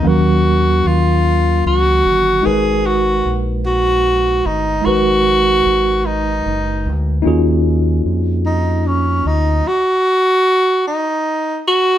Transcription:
<<
  \new Staff \with { instrumentName = "Tenor saxophone" } { \time 6/8 \key ees \minor \tempo 4. = 50 ges'4 f'4 ges'4 | aes'8 ges'8 r8 ges'4 ees'8 | ges'4. ees'4 r8 | r4. ees'8 des'8 ees'8 |
ges'4. ees'4 ges'8 | }
  \new Staff \with { instrumentName = "Tine electric piano" } { \time 6/8 \key ees \minor <ees ges bes des' bes' f''>2. | <aes ees' ges' bes' ces''>2. | <aes ees' ges' bes' ces''>2. | <bes des' ees' f' ges' aes'>2. |
r2. | }
  \new Staff \with { instrumentName = "Fingered electric bass" } { \clef bass \time 6/8 \key ees \minor ees,4 ees,4 des,8 g,,8 | aes,,4 bes,,4. g,,8 | aes,,4 aes,,4 ges,,8 d,8 | ees,4 f,4. d,8 |
r2. | }
>>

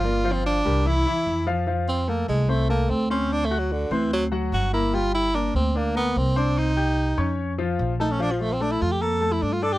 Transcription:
<<
  \new Staff \with { instrumentName = "Grand piano" } { \time 4/4 \key f \major \tempo 4 = 147 <bes bes' d''>8 <f f' f''>4 <g g' bes'>8 <e e' e''>8 <e e' e''>4 <f f' f''>8 | <f f' f''>4 <a a' a''>4 <c' c'' c'''>8 <a a' a''>4 <c' c'' c'''>8~ | <c' c'' c'''>8 <fis' fis'' fis'''>4 <c' c'' c'''>4 <fis fis' fis''>4 <bes bes' bes''>8 | <g g' g''>4 <bes bes' bes''>4 <d' d'' d'''>8 <bes bes' bes''>4 <c' c'' c'''>8~ |
<c' c'' c'''>8 <g' g'' g'''>4 <des' des'' des'''>4 <f f' f''>4 <a a' a''>8 | <f f' f''>4 <a a' a''>4 <bes bes' bes''>8 <a a' a''>4 <d' d'' d'''>8 | }
  \new Staff \with { instrumentName = "Tenor saxophone" } { \time 4/4 \key f \major \tuplet 3/2 { f'4 c'8 } d'4 e'4. r8 | r8 c'8 bes8 aes8 a8 bes8 c'8 des'8 | \tuplet 3/2 { d'8 a8 fis8 } d8 e8 fis8 r8 fis'8 e'8 | f'8 e'8 d'8 c'8 bes8 b8 c'8 d'8 |
ees'2 r4. ees'16 cis'16 | d'16 f16 a16 c'16 d'16 e'16 f'16 g'16 a'8. e'16 d'16 f'16 a'16 g'16 | }
  \new Staff \with { instrumentName = "Upright bass" } { \clef bass \time 4/4 \key f \major g,,4. c,4 e,8 f,4~ | f,4. c,4. d,4~ | d,4. d,4. g,,4~ | g,,4. d,4. c,4~ |
c,4. f,4. bes,,4~ | bes,,4. f,4. g,4 | }
>>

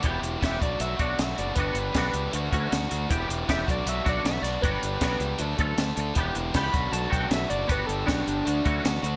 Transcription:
<<
  \new Staff \with { instrumentName = "Analog synth lead" } { \time 4/4 \key g \lydian \tempo 4 = 157 r4 e''8 d''8 e''8 d''8 e''8 d''8 | b'2. r4 | r4 e''8 d''8 e''8 d''8 e''8 d''8 | b'2. r4 |
r4 b''4 a''8 g''8 e''8 d''8 | b'8 a'8 d'2. | }
  \new Staff \with { instrumentName = "Clean electric guitar" } { \time 4/4 \key g \lydian <e b d' g'>8 r8 <e b d' g'>8 r4 <a d' fis'>8 r4 | <b d' fis'>8 r8 <b d' fis'>8 r4 <fis a cis' fis'>8 r4 | <e b d' g'>8 r8 <e b d' g'>8 r4 <a d' fis'>8 r4 | <fis b d' fis'>8 r8 <fis b d' fis'>8 r4 <fis a cis' a'>8 r4 |
<b d' g'>8 r8 <b d' g'>8 r4 <a d' fis'>8 r4 | <b d' fis'>8 r8 <b d' fis'>8 r4 <fis a cis' fis'>8 r4 | }
  \new Staff \with { instrumentName = "Overdriven electric guitar" } { \time 4/4 \key g \lydian <e b e' g'>4 <e b e' g'>8 <fis b d' fis'>8 <fis b d' fis'>8 <b d' fis'>4 <b d' fis'>8 | <b d' g'>4 <b d' g'>8 <d' g'>8 <a d' fis'>8 <d' fis'>4 <d' fis'>8 | <e b e' g'>4 <e b e' g'>8 <fis b d' fis'>8 <fis b d' fis'>8 <b d' fis'>4 <b d' fis'>8 | <b d' g'>4 <b d' g'>8 <d' g'>8 <fis a d' a'>8 <a d' a'>4 <a d' a'>8 |
<e b e' g'>4 <e b e' g'>8 <fis b d' fis'>8 <fis b d' fis'>8 <b d' fis'>4 <b d' fis'>8 | <b d' g'>4 <b d' g'>8 <d' g'>8 <a d' fis'>8 <d' fis'>4 <d' fis'>8 | }
  \new Staff \with { instrumentName = "Fingered electric bass" } { \clef bass \time 4/4 \key g \lydian e,,8 e,,8 e,,8 b,,8 b,,8 b,,8 b,,8 fis,,8 | g,,8 g,,8 b,,8 cis,8 d,8 d,8 d,8 d,8 | e,,8 e,,8 e,,8 b,,8 b,,8 b,,8 b,,8 b,,8 | g,,8 g,,8 b,,8 cis,8 d,8 d,8 d,8 d,8 |
e,,8 e,,8 cis,8 b,,8 b,,8 b,,8 b,,8 fis,,8 | g,,8 g,,8 b,,8 g,,8 d,8 d,8 d,8 d,8 | }
  \new DrumStaff \with { instrumentName = "Drums" } \drummode { \time 4/4 <hh bd>8 hh8 <hh bd sn>8 <hh bd>8 hh8 <hh bd>8 <hh sn>8 hh8 | <hh bd>8 hh8 <hh bd sn>8 hh8 hh8 <hh bd>8 <hh sn>8 hh8 | <hh bd>8 hh8 <hh bd sn>8 <hh bd>8 hh8 <hh bd>8 <hh sn>8 <hh sn>8 | <hh bd>8 hh8 <hh bd sn>8 hh8 hh8 <hh bd>8 <hh sn>8 hh8 |
<hh bd>8 hh8 <hh bd sn>8 <hh bd>8 hh8 <hh bd>8 <hh sn>8 hh8 | <hh bd>8 hh8 <hh bd sn>8 hh8 hh8 <hh bd>8 <hh sn>8 hh8 | }
>>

